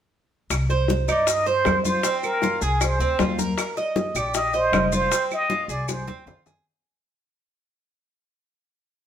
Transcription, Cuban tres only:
0.70 1.07 C5 medium
1.08 1.46 D#4 medium
1.46 1.84 C5 medium
1.85 2.04 F4 medium
2.04 2.42 C4 medium
2.43 2.61 F4 medium
2.62 2.99 G#4 medium
3.00 3.19 C4 medium
3.20 3.38 F4 medium
3.39 3.76 A#4 medium
3.77 4.15 D#5 medium
4.16 4.53 G4 medium
4.54 4.91 D#5 medium
4.92 5.11 F4 medium
5.11 5.49 C4 medium
5.50 5.69 F4 medium
5.69 6.07 G#4 medium
6.07 6.26 C4 medium
6.27 6.45 F4 medium
6.46 6.65 G#4 medium

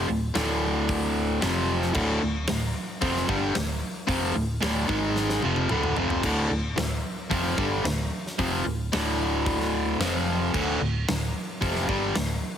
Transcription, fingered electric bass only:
0.09 0.34 D1 medium
0.35 1.38 D1 medium
1.43 1.92 F1 loud
1.96 2.21 D1 loud
2.22 2.47 D1 medium
2.50 2.74 D1 medium
3.01 3.27 F1 medium
3.29 3.54 G1 loud
3.56 3.81 D1 medium
4.09 4.34 F1 loud
4.36 4.61 D1 medium
4.62 4.88 D1 loud
4.89 5.39 G#1 medium
5.44 5.69 F1 medium
5.71 5.95 D1 medium
5.98 6.22 F1 loud
6.23 6.48 D1 medium
6.50 6.75 D1 medium
6.77 7.02 D1 medium
7.31 7.56 F1 loud
7.58 7.83 G1 loud
7.84 8.09 D1 medium
8.39 8.64 F1 loud
8.66 8.90 D1 medium
8.94 9.96 D1 medium
10.00 10.50 F1 medium
10.55 10.79 D1 medium
10.81 11.06 D1 medium
11.09 11.33 D1 medium
11.62 11.87 F1 medium
11.89 12.14 G1 loud
12.16 12.41 D1 medium

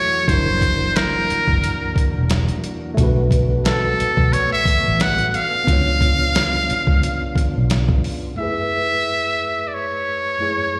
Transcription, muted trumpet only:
0.00 0.30 C#5 loud
0.28 0.98 C5 loud
0.96 2.31 A#4 medium
3.65 4.35 A4 medium
4.33 4.52 C#5 medium
4.53 5.03 E5 loud
5.01 5.29 F#5 loud
5.29 5.37 F#5 medium
5.35 7.70 F5 loud
8.38 9.69 E5 loud
9.68 9.75 D5 medium
9.74 10.80 C#5 medium

